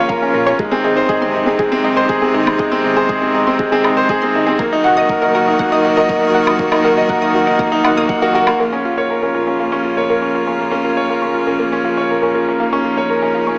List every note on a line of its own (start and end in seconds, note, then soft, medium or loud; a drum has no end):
0.00 0.56 C#3 medium
0.00 0.55 F3 medium
0.00 0.56 A#3 medium
0.00 0.62 A#3 medium
0.00 0.22 C#4 medium
0.00 0.34 F4 medium
0.00 0.56 F4 medium
0.00 0.10 A#4 medium
0.00 0.62 C#5 medium
0.09 0.17 A#4 medium
0.09 0.21 F5 medium
0.09 kick medium
0.22 0.29 C#4 medium
0.34 0.53 A#2 medium
0.34 0.46 F4 medium
0.34 0.42 A#4 medium
0.47 0.59 C#4 medium
0.47 0.54 C#5 medium
0.58 4.55 C3 medium
0.58 4.55 D#3 medium
0.58 4.55 G#3 medium
0.58 0.71 G#3 medium
0.58 4.55 D#4 medium
0.58 kick loud
0.71 0.79 C4 medium
0.71 0.80 G#4 medium
0.84 1.03 G#1 medium
0.84 0.96 D#4 medium
0.84 0.89 G#4 medium
0.97 1.09 C5 medium
1.09 1.16 G#4 medium
1.09 1.21 D#5 medium
1.09 kick medium
1.21 1.31 G#1 medium
1.21 1.29 C4 medium
1.21 1.34 C6 medium
1.34 1.53 G#1 medium
1.34 1.46 D#4 medium
1.46 1.58 C4 medium
1.46 1.55 G#4 medium
1.59 1.71 G#3 medium
1.59 1.64 G#4 medium
1.59 kick medium
1.72 1.79 C4 medium
1.84 2.03 F#1 medium
1.84 1.96 D#4 medium
1.84 1.96 D#5 medium
1.97 2.09 C5 medium
1.97 2.09 C6 medium
2.09 2.16 G#4 medium
2.09 kick medium
2.22 2.29 C4 medium
2.22 2.30 G#4 medium
2.34 2.53 G#1 loud
2.34 2.46 D#4 medium
2.34 2.39 G#4 medium
2.46 2.59 C4 medium
2.46 low woodblock medium
2.59 2.71 G#3 medium
2.59 2.71 D#5 medium
2.59 kick medium
2.72 2.79 C4 medium
2.72 2.83 C6 medium
2.84 3.03 G#1 loud
2.84 2.96 D#4 medium
2.97 3.04 G#4 medium
2.97 3.09 C5 medium
3.09 3.16 G#4 medium
3.09 3.14 G#4 medium
3.09 kick medium
3.22 3.31 G#1 medium
3.22 3.29 C4 medium
3.35 3.53 G#1 medium
3.35 3.46 D#4 medium
3.35 3.46 D#5 medium
3.47 3.59 C4 medium
3.47 3.58 C6 medium
3.59 3.71 G#3 medium
3.59 kick medium
3.72 3.79 C4 medium
3.72 3.80 G#4 medium
3.84 4.03 F#1 medium
3.84 3.96 D#4 medium
3.84 3.89 G#4 medium
3.84 low woodblock medium
3.97 4.09 C5 loud
4.09 4.17 G#4 medium
4.09 4.21 D#5 medium
4.09 kick medium
4.22 4.29 C4 medium
4.22 4.33 C6 medium
4.34 4.53 G#1 medium
4.34 4.47 D#4 medium
4.47 4.59 C4 medium
4.47 4.54 G#4 medium
4.59 8.55 D#3 medium
4.59 8.55 F#3 medium
4.59 8.55 A#3 medium
4.59 4.72 A#3 medium
4.59 8.55 F#4 medium
4.59 4.64 A#4 medium
4.59 kick medium
4.73 4.79 D#4 medium
4.84 5.03 F#1 medium
4.84 4.97 F#4 medium
4.84 4.96 F#5 medium
4.97 5.09 D#5 medium
4.97 5.08 D#6 medium
5.09 5.17 A#4 medium
5.09 kick medium
5.22 5.31 F#1 medium
5.22 5.29 D#4 medium
5.22 5.30 A#4 medium
5.34 5.53 F#1 loud
5.34 5.47 F#4 medium
5.34 5.39 A#4 medium
5.47 5.59 D#4 medium
5.59 5.71 A#3 medium
5.59 5.71 F#5 medium
5.59 kick medium
5.72 5.79 D#4 loud
5.72 5.84 D#6 medium
5.85 6.03 F#1 medium
5.85 5.96 F#4 medium
5.97 6.05 A#4 medium
5.97 6.09 D#5 loud
6.09 6.17 A#4 medium
6.09 6.14 A#4 medium
6.09 kick medium
6.22 6.29 D#4 medium
6.34 6.53 F#1 loud
6.34 6.46 F#4 medium
6.34 6.46 F#5 medium
6.47 6.59 D#4 medium
6.47 6.59 D#6 medium
6.47 low woodblock medium
6.59 6.71 A#3 medium
6.59 kick loud
6.72 6.79 D#4 loud
6.72 6.80 A#4 medium
6.72 low woodblock medium
6.84 7.03 F#1 medium
6.84 6.96 F#4 medium
6.84 6.89 A#4 medium
6.97 7.09 D#5 medium
7.09 7.17 A#4 medium
7.09 7.21 F#5 medium
7.09 kick medium
7.22 7.31 F#1 medium
7.22 7.29 D#4 medium
7.22 7.33 D#6 medium
7.35 7.53 F#1 medium
7.35 7.46 F#4 medium
7.47 7.59 D#4 medium
7.47 7.55 A#4 medium
7.59 7.72 A#3 medium
7.59 7.64 A#4 medium
7.59 kick loud
7.72 7.79 D#4 medium
7.84 8.03 F#1 medium
7.84 7.91 D#4 medium
7.84 7.96 F#5 medium
7.84 low woodblock medium
7.97 8.09 A#3 medium
7.97 8.09 D#6 medium
8.09 8.16 F#5 medium
8.09 kick medium
8.22 8.33 F#4 loud
8.22 8.30 A#4 medium
8.34 8.53 F#1 loud
8.34 8.41 F#4 medium
8.34 8.39 A#4 medium
8.47 8.58 A#3 loud
8.47 low woodblock medium
8.59 13.59 A#1 medium
8.59 13.59 C#3 medium
8.59 13.59 F3 medium
8.59 13.59 A#3 medium
8.59 8.71 A#3 medium
8.59 12.55 F4 medium
8.59 8.64 A#4 medium
8.72 8.79 C#4 medium
8.85 8.97 F4 medium
8.85 8.96 F5 medium
8.98 9.09 C#5 medium
8.98 9.09 C#6 medium
9.10 9.17 A#4 medium
9.23 9.30 C#4 medium
9.23 9.30 A#4 medium
9.35 9.47 F4 medium
9.35 9.39 A#4 medium
9.47 9.59 C#4 medium
9.60 9.71 A#3 medium
9.60 9.71 F5 medium
9.72 9.79 C#4 medium
9.72 9.84 C#6 medium
9.84 9.96 F4 medium
9.97 10.05 A#4 medium
9.97 10.09 C#5 medium
10.10 10.17 A#4 medium
10.10 10.14 A#4 medium
10.22 10.29 C#4 medium
10.34 10.46 F4 medium
10.34 10.46 F5 medium
10.47 10.59 C#4 medium
10.47 10.59 C#6 medium
10.59 10.71 A#3 medium
10.71 10.79 C#4 medium
10.71 10.80 A#4 medium
10.84 10.96 F4 medium
10.84 10.89 A#4 medium
10.97 11.09 C#5 medium
11.09 11.17 A#4 medium
11.09 11.21 F5 medium
11.22 11.29 C#4 medium
11.22 11.33 C#6 medium
11.34 11.46 F4 medium
11.47 11.59 C#4 medium
11.47 11.55 A#4 medium
11.59 11.72 A#3 medium
11.59 11.64 A#4 medium
11.72 11.79 C#4 medium
11.85 11.97 F4 medium
11.85 11.96 F5 medium
11.97 12.09 C#5 medium
11.97 12.09 C#6 medium
12.10 12.17 A#4 medium
12.22 12.30 C#4 medium
12.22 12.30 A#4 medium
12.34 12.47 F4 medium
12.34 12.39 A#4 medium
12.48 12.59 C#4 medium
12.59 12.72 A#3 medium
12.59 13.59 D#4 medium
12.59 12.71 F5 medium
12.73 12.79 C#4 medium
12.73 12.84 C#6 medium
12.85 12.97 F4 medium
12.97 13.05 A#4 medium
12.97 13.09 C#5 medium
13.09 13.17 A#4 medium
13.09 13.14 A#4 medium
13.22 13.29 C#4 medium
13.35 13.47 F4 medium
13.35 13.46 F5 medium
13.47 13.59 C#4 medium
13.47 13.58 C#6 medium